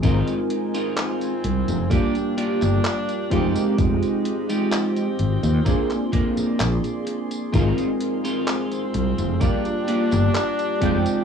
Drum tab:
HH |xxxxxxxxxxxxxxxx|xxxxxxxxxxxxxxxx|xxxxxxxxxxxxxxxx|
TB |xx-xxx-xxx-xxx-x|xx-xxx-xxx-xxx-x|xx-xxx-xxx-xxx-x|
CP |----x------xx---|----x----x--x---|----x------xx---|
BD |o-------o-----o-|o-------o-o-----|o-------o-----o-|